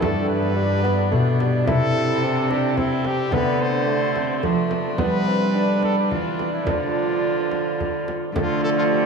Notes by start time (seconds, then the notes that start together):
0.00 G2 A3 B3 D4 A4, frame drum
0.29 B4
0.56 G3 D4
0.84 B3, frame drum
1.11 B2 A3, frame drum
1.39 G3, frame drum
1.65 C3 C4 E4 A4, frame drum
2.23 C4 D4
2.50 D4 G4, frame drum
2.77 C4 E4, frame drum
3.05 G4, frame drum
3.30 D3 A3 B3 D4 B4, frame drum
3.61 C5
3.87 A3
4.16 C4, frame drum
4.43 F3 A3 D4, frame drum
4.71 frame drum
4.97 G3 B3 D4 B4, frame drum
5.27 C4
5.55 D4
5.83 A4, frame drum
5.98 G4
6.10 D3 E3 F4, frame drum
6.39 frame drum
6.53 E4
6.64 D3 F3 A3 D4, frame drum
6.69 F4
7.51 frame drum
7.80 frame drum
8.08 frame drum
8.32 D3 F3 A3 D4, frame drum
8.36 A3 F4
8.64 A4
8.77 F4
8.91 G4